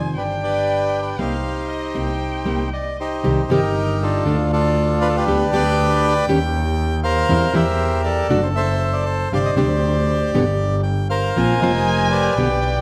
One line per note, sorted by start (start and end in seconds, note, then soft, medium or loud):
0.00 0.12 F2 medium
0.00 0.15 C3 medium
0.00 0.16 D#3 medium
0.00 0.16 G#3 medium
0.00 0.17 C4 medium
0.00 0.17 F4 medium
0.00 0.17 C5 medium
0.00 0.13 G#5 medium
0.16 1.14 G1 medium
0.16 1.16 D4 medium
0.16 0.42 G4 soft
0.16 0.23 B4 medium
0.16 1.20 G5 medium
0.30 0.35 C5 medium
0.43 1.16 G4 soft
0.43 1.01 B4 soft
0.43 0.99 D5 medium
1.02 1.20 B4 medium
1.18 1.38 C2 medium
1.18 1.36 G3 medium
1.18 1.35 A#3 medium
1.18 1.35 C4 medium
1.18 2.70 D#4 soft
1.18 2.70 G4 soft
1.18 2.69 C5 medium
1.18 1.70 F5 medium
1.70 1.97 D#5 medium
1.94 2.15 C2 medium
1.94 2.11 G3 medium
1.94 2.11 A#3 medium
1.94 2.11 C4 medium
1.94 2.75 G5 medium
2.45 2.66 C2 medium
2.45 2.63 G3 medium
2.45 2.63 A#3 medium
2.45 2.63 C4 medium
2.73 2.97 D5 medium
2.73 3.24 D#5 medium
3.00 3.50 D#4 medium
3.00 3.50 G4 medium
3.00 3.42 C5 medium
3.24 3.46 C2 medium
3.24 3.41 C3 medium
3.24 3.41 D#3 medium
3.24 3.41 G3 medium
3.24 3.41 C4 medium
3.24 3.42 G4 medium
3.43 3.50 C5 medium
3.50 4.23 G1 medium
3.50 3.59 C3 loud
3.50 3.59 D#3 loud
3.50 3.60 G3 loud
3.50 3.60 C4 loud
3.50 4.24 D#4 medium
3.50 3.60 G4 loud
3.50 4.24 G4 medium
3.50 4.03 A#4 loud
4.02 4.51 D4 medium
4.02 4.51 F4 medium
4.02 4.49 A4 medium
4.26 5.23 D2 loud
4.26 4.35 D3 medium
4.26 4.36 A3 medium
4.26 4.36 D4 medium
4.26 4.36 F4 medium
4.52 5.16 D4 medium
4.52 5.25 F4 medium
4.52 4.99 A4 loud
5.01 5.08 B4 loud
5.09 5.16 A4 medium
5.16 6.14 D4 medium
5.16 6.14 G4 medium
5.16 5.50 B4 loud
5.27 5.50 D2 medium
5.27 5.44 D3 medium
5.27 5.45 G3 medium
5.27 5.45 B3 medium
5.27 5.45 G4 medium
5.53 6.25 D2 medium
5.53 5.62 D3 loud
5.53 5.62 G3 loud
5.53 5.62 B3 loud
5.53 5.62 G4 loud
5.53 6.26 B4 medium
5.53 6.25 D5 medium
5.53 7.00 G5 loud
6.28 7.25 D#2 loud
6.28 6.38 D#3 medium
6.28 6.38 G3 medium
6.28 6.38 C#4 medium
6.28 6.38 G4 loud
7.04 7.55 A#4 medium
7.04 8.01 C5 medium
7.04 7.51 F5 loud
7.29 7.51 E2 medium
7.29 7.46 E3 medium
7.29 7.46 G3 medium
7.29 7.46 C4 medium
7.29 7.47 E4 medium
7.54 8.27 E2 loud
7.54 7.63 E3 loud
7.54 7.63 G3 loud
7.54 7.64 C4 loud
7.54 7.64 E4 loud
7.54 8.27 G4 medium
7.54 8.27 A#4 medium
7.54 8.07 E5 loud
8.04 8.56 A4 medium
8.04 8.44 D5 loud
8.30 9.27 F#1 medium
8.30 8.39 C3 medium
8.30 8.39 F#3 loud
8.30 8.39 A3 loud
8.30 8.40 D4 loud
8.30 8.40 F#4 loud
8.43 8.49 C5 medium
8.56 9.29 A4 medium
8.56 9.04 C5 medium
8.56 8.95 E5 loud
8.93 9.05 D5 medium
9.05 9.32 C5 loud
9.32 9.54 G1 medium
9.32 9.49 C3 medium
9.32 9.49 G3 medium
9.32 9.50 C4 medium
9.32 9.50 D4 medium
9.32 9.50 G4 medium
9.32 10.31 C5 medium
9.32 9.55 D5 medium
9.32 9.38 F5 loud
9.45 9.51 D#5 loud
9.56 10.30 D2 medium
9.56 9.66 C3 loud
9.56 9.66 G3 medium
9.56 9.66 C4 medium
9.56 9.66 D4 loud
9.56 9.67 G4 loud
9.56 10.81 G4 medium
9.56 10.81 D5 loud
10.33 11.31 G1 medium
10.33 10.43 B2 medium
10.33 10.43 D3 loud
10.33 10.43 G3 medium
10.33 10.43 B3 loud
10.33 10.44 G4 loud
10.83 11.08 G5 medium
11.10 11.60 A#4 medium
11.10 11.61 C5 medium
11.10 11.63 F5 loud
11.36 11.58 A#1 medium
11.36 11.53 F3 medium
11.36 11.54 A#3 medium
11.36 11.54 C4 medium
11.36 11.54 F4 medium
11.36 12.38 G#5 loud
11.60 12.34 F1 medium
11.60 11.71 F3 medium
11.60 11.71 A#3 loud
11.60 11.71 C4 loud
11.60 11.72 F4 loud
11.60 12.34 A#4 medium
11.60 12.34 C5 medium
11.60 12.08 D#5 loud
12.11 12.81 G4 medium
12.11 12.81 B4 medium
12.11 12.60 D5 medium
12.37 12.81 B1 loud
12.37 12.47 B2 medium
12.37 12.47 D3 medium
12.37 12.47 G3 loud
12.37 12.47 B3 loud
12.37 12.47 G4 loud
12.37 12.81 G5 loud
12.61 12.81 D5 medium